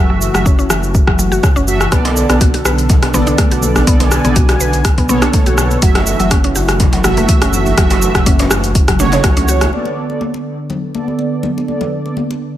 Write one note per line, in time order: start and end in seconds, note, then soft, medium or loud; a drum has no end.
0.00 0.29 F#1 medium
0.00 1.88 E3 medium
0.00 0.31 A3 medium
0.00 1.88 A3 medium
0.00 0.31 F#4 medium
0.00 1.88 F#4 medium
0.00 0.31 E5 medium
0.10 0.20 F#3 medium
0.21 cabasa medium
0.34 0.65 F#1 medium
0.34 0.45 F#3 medium
0.34 0.46 A3 medium
0.34 0.46 F#4 medium
0.34 0.46 E5 medium
0.34 cross-stick medium
0.34 cabasa soft
0.46 0.53 C#4 medium
0.46 kick loud
0.46 cabasa soft
0.59 0.69 C#4 medium
0.59 cabasa soft
0.70 1.02 F#1 medium
0.70 0.82 E3 medium
0.70 cross-stick medium
0.70 cabasa medium
0.83 cabasa soft
0.95 kick loud
0.95 cabasa soft
1.07 1.38 F#1 medium
1.07 1.18 F#3 medium
1.07 kick medium
1.07 cross-stick medium
1.19 1.31 F#3 medium
1.19 cabasa medium
1.32 1.43 F#4 medium
1.32 cabasa soft
1.43 1.55 C#3 medium
1.43 kick loud
1.43 cross-stick medium
1.43 cabasa soft
1.56 1.87 F#1 medium
1.56 1.62 C#4 medium
1.56 cabasa soft
1.68 1.89 A3 medium
1.68 1.89 F#4 medium
1.68 1.89 E5 loud
1.68 cabasa medium
1.81 cross-stick medium
1.81 cabasa soft
1.92 2.24 B1 medium
1.92 5.79 D3 medium
1.92 2.04 B3 loud
1.92 2.27 B3 medium
1.92 5.79 B3 medium
1.92 3.85 A4 medium
1.92 2.27 A4 medium
1.92 2.26 D5 loud
1.92 kick loud
1.92 cross-stick medium
1.92 closed hi-hat medium
1.92 djembe tone medium
1.92 high conga medium
1.92 cabasa medium
2.05 2.15 B3 medium
2.05 closed hi-hat soft
2.05 djembe slap loud
2.05 muted conga soft
2.17 cabasa medium
2.29 2.60 B1 loud
2.29 2.40 B3 medium
2.29 2.41 B3 medium
2.29 2.41 A4 medium
2.29 2.41 D5 medium
2.29 cross-stick medium
2.29 closed hi-hat soft
2.29 muted conga soft
2.29 djembe tone medium
2.29 cabasa soft
2.41 2.48 F#4 medium
2.41 kick loud
2.41 closed hi-hat medium
2.41 high conga medium
2.41 cabasa soft
2.54 2.64 F#4 medium
2.54 closed hi-hat soft
2.54 muted conga soft
2.54 djembe tone medium
2.65 2.97 B1 medium
2.65 2.73 B4 medium
2.65 cross-stick medium
2.65 cabasa medium
2.78 closed hi-hat soft
2.78 cabasa soft
2.89 kick loud
2.89 closed hi-hat medium
2.89 mid tom medium
2.89 djembe slap medium
2.89 muted conga soft
2.89 djembe tone medium
2.89 low conga medium
2.89 cabasa soft
3.02 3.34 B1 medium
3.02 3.13 B3 medium
3.02 cross-stick medium
3.02 closed hi-hat soft
3.02 djembe slap medium
3.14 3.85 B3 medium
3.14 3.26 B3 loud
3.14 3.85 A4 medium
3.14 3.85 D5 medium
3.14 mid tom medium
3.14 muted conga soft
3.14 high conga medium
3.14 djembe tone medium
3.14 djembe bass medium
3.14 cabasa medium
3.27 3.38 D4 medium
3.27 closed hi-hat soft
3.27 high conga medium
3.27 cabasa soft
3.38 3.50 A3 medium
3.38 kick loud
3.38 cross-stick medium
3.38 closed hi-hat medium
3.38 muted conga soft
3.38 cabasa soft
3.51 3.82 B1 medium
3.51 3.62 F#4 medium
3.51 closed hi-hat soft
3.51 djembe tone medium
3.51 cabasa soft
3.62 high conga medium
3.62 low conga medium
3.62 cabasa medium
3.76 cross-stick medium
3.76 muted conga soft
3.76 djembe tone medium
3.76 djembe bass medium
3.76 cabasa soft
3.87 4.19 B1 loud
3.87 4.22 B3 medium
3.87 3.99 B3 loud
3.87 4.22 A4 medium
3.87 4.21 D5 medium
3.87 5.80 G#5 medium
3.87 kick loud
3.87 closed hi-hat medium
3.87 high conga medium
3.87 cabasa soft
4.00 4.11 B3 medium
4.00 closed hi-hat soft
4.00 djembe slap medium
4.00 muted conga soft
4.00 djembe bass loud
4.00 low conga medium
4.11 cross-stick medium
4.11 djembe tone medium
4.11 cabasa medium
4.24 4.55 B1 loud
4.24 4.36 B3 medium
4.24 4.35 B3 medium
4.24 4.36 A4 medium
4.24 4.36 D5 medium
4.24 closed hi-hat soft
4.24 mid tom medium
4.24 muted conga soft
4.24 cabasa soft
4.35 4.43 F#4 medium
4.35 kick loud
4.35 closed hi-hat medium
4.35 djembe tone medium
4.35 high conga medium
4.35 cabasa soft
4.49 4.59 F#4 medium
4.49 cross-stick medium
4.49 closed hi-hat soft
4.49 djembe slap medium
4.49 muted conga medium
4.49 cabasa soft
4.60 4.92 B1 medium
4.60 4.68 B4 medium
4.60 cabasa medium
4.73 closed hi-hat soft
4.73 djembe tone medium
4.73 cabasa soft
4.85 kick loud
4.85 cross-stick medium
4.85 closed hi-hat medium
4.85 muted conga soft
4.85 cabasa soft
4.98 5.29 B1 medium
4.98 5.08 B3 medium
4.98 kick medium
4.98 closed hi-hat soft
4.98 djembe tone medium
5.09 5.80 B3 loud
5.09 5.21 B3 loud
5.09 5.80 A4 medium
5.09 5.80 C#5 loud
5.09 mid tom medium
5.09 muted conga soft
5.09 high conga medium
5.09 cabasa medium
5.22 5.33 D4 medium
5.22 cross-stick medium
5.22 closed hi-hat soft
5.22 cabasa soft
5.33 5.45 A3 medium
5.33 kick loud
5.33 closed hi-hat medium
5.33 muted conga soft
5.33 high conga loud
5.33 djembe tone medium
5.33 djembe bass medium
5.33 cabasa soft
5.46 5.77 B1 loud
5.46 5.57 F#4 medium
5.46 closed hi-hat soft
5.46 high conga medium
5.46 low conga medium
5.46 cabasa soft
5.58 cross-stick medium
5.58 djembe tone medium
5.58 cabasa medium
5.71 muted conga medium
5.71 cabasa soft
5.82 6.14 F#1 loud
5.82 9.69 E3 medium
5.82 5.94 F#3 loud
5.82 9.69 A3 medium
5.82 6.17 A3 medium
5.82 9.69 F#4 medium
5.82 6.17 F#4 medium
5.82 6.17 E5 loud
5.82 kick loud
5.82 closed hi-hat medium
5.82 high conga medium
5.82 cabasa soft
5.95 6.06 F#3 medium
5.95 cross-stick medium
5.95 closed hi-hat soft
5.95 djembe slap loud
5.95 muted conga medium
5.95 djembe tone medium
6.07 cabasa medium
6.20 6.51 F#1 medium
6.20 6.30 F#3 medium
6.20 6.31 A3 medium
6.20 6.31 F#4 medium
6.20 6.31 E5 medium
6.20 closed hi-hat soft
6.20 muted conga soft
6.20 djembe tone medium
6.20 cabasa soft
6.31 6.38 C#4 medium
6.31 kick loud
6.31 cross-stick medium
6.31 closed hi-hat medium
6.31 high conga medium
6.31 cabasa soft
6.44 6.55 C#4 medium
6.44 closed hi-hat soft
6.44 muted conga soft
6.55 6.87 F#1 medium
6.55 6.63 F#4 medium
6.55 djembe tone medium
6.55 cabasa medium
6.68 cross-stick medium
6.68 closed hi-hat soft
6.68 cabasa soft
6.80 kick loud
6.80 closed hi-hat medium
6.80 mid tom medium
6.80 muted conga soft
6.80 djembe slap medium
6.80 djembe tone medium
6.80 low conga medium
6.80 cabasa soft
6.93 7.24 F#1 medium
6.93 7.03 F#3 medium
6.93 closed hi-hat soft
6.93 djembe slap medium
7.04 7.16 F#3 loud
7.04 7.75 A3 medium
7.04 7.75 F#4 medium
7.04 7.75 E5 medium
7.04 cross-stick medium
7.04 mid tom medium
7.04 muted conga soft
7.04 high conga medium
7.04 djembe bass medium
7.04 cabasa medium
7.17 7.28 A3 medium
7.17 closed hi-hat soft
7.17 djembe tone medium
7.17 high conga medium
7.17 cabasa soft
7.29 7.41 E3 medium
7.29 kick loud
7.29 closed hi-hat medium
7.29 muted conga soft
7.29 cabasa soft
7.42 7.73 F#1 medium
7.42 7.52 C#4 medium
7.42 cross-stick medium
7.42 closed hi-hat soft
7.42 djembe tone medium
7.42 cabasa soft
7.53 high conga medium
7.53 low conga medium
7.53 cabasa medium
7.66 muted conga medium
7.66 djembe bass medium
7.66 cabasa soft
7.78 8.09 F#1 medium
7.78 7.89 F#3 loud
7.78 8.12 A3 medium
7.78 8.12 F#4 medium
7.78 8.12 E5 loud
7.78 kick loud
7.78 cross-stick medium
7.78 closed hi-hat medium
7.78 high conga medium
7.78 djembe tone medium
7.78 cabasa medium
7.90 8.01 F#3 medium
7.90 closed hi-hat soft
7.90 muted conga medium
7.90 djembe slap medium
7.90 low conga medium
7.90 djembe bass medium
7.90 cabasa soft
8.02 djembe tone medium
8.02 cabasa medium
8.15 8.46 F#1 loud
8.15 8.25 F#3 medium
8.15 8.26 A3 medium
8.15 8.26 F#4 medium
8.15 8.26 E5 medium
8.15 kick medium
8.15 cross-stick medium
8.15 closed hi-hat soft
8.15 mid tom medium
8.15 muted conga soft
8.15 cabasa soft
8.26 8.34 C#4 medium
8.26 kick loud
8.26 closed hi-hat medium
8.26 high conga medium
8.26 cabasa soft
8.39 8.50 C#4 medium
8.39 closed hi-hat soft
8.39 djembe slap medium
8.39 muted conga soft
8.39 djembe tone medium
8.39 cabasa soft
8.51 8.82 F#1 medium
8.51 8.58 F#4 medium
8.51 cross-stick medium
8.51 cabasa medium
8.64 closed hi-hat soft
8.64 djembe tone medium
8.64 cabasa soft
8.75 kick loud
8.75 closed hi-hat medium
8.75 muted conga soft
8.75 cabasa soft
8.88 9.19 F#1 loud
8.88 8.99 F#3 medium
8.88 kick medium
8.88 cross-stick medium
8.88 closed hi-hat soft
8.88 cabasa soft
8.99 9.70 A3 loud
8.99 9.12 C#4 medium
8.99 9.70 F#4 medium
8.99 9.70 C#5 loud
8.99 mid tom medium
8.99 muted conga medium
8.99 high conga medium
8.99 djembe tone loud
8.99 cabasa medium
9.12 9.19 C#3 loud
9.12 closed hi-hat soft
9.12 djembe slap medium
9.12 cabasa soft
9.24 9.31 F#3 loud
9.24 kick loud
9.24 cross-stick medium
9.24 closed hi-hat medium
9.24 muted conga soft
9.24 high conga medium
9.24 djembe tone medium
9.24 djembe bass medium
9.24 cabasa soft
9.37 9.68 C#2 loud
9.37 9.47 C#4 medium
9.37 closed hi-hat soft
9.37 high conga medium
9.37 low conga medium
9.37 cabasa soft
9.48 9.60 F#4 medium
9.48 cabasa medium
9.61 cross-stick medium
9.61 closed hi-hat soft
9.61 muted conga medium
9.61 djembe tone medium
9.61 cabasa soft
9.73 12.57 D3 medium
9.73 10.07 B3 medium
9.73 12.57 B3 medium
9.73 12.57 A4 medium
9.73 10.07 A4 medium
9.73 10.07 D5 medium
9.73 high conga medium
9.73 cabasa soft
9.85 muted conga soft
9.97 cabasa medium
10.10 10.21 B3 medium
10.10 10.21 A4 medium
10.10 10.21 D5 medium
10.10 muted conga soft
10.10 cabasa soft
10.21 high conga medium
10.34 muted conga soft
10.46 cabasa medium
10.59 cabasa soft
10.70 muted conga soft
10.70 low conga medium
10.83 cabasa soft
10.95 11.65 B3 medium
10.95 11.65 A4 medium
10.95 11.65 D5 medium
10.95 muted conga soft
10.95 high conga medium
11.08 high conga medium
11.19 muted conga soft
11.43 high conga medium
11.43 low conga medium
11.43 cabasa medium
11.58 muted conga soft
11.68 12.02 B3 medium
11.68 12.02 A4 medium
11.68 12.02 D5 medium
11.68 high conga medium
11.68 cabasa soft
11.81 muted conga soft
11.81 low conga medium
11.92 cabasa medium
12.05 12.17 B3 medium
12.05 12.16 A4 medium
12.05 12.16 D5 medium
12.05 muted conga soft
12.17 high conga medium
12.31 muted conga soft
12.41 cabasa medium
12.54 cabasa soft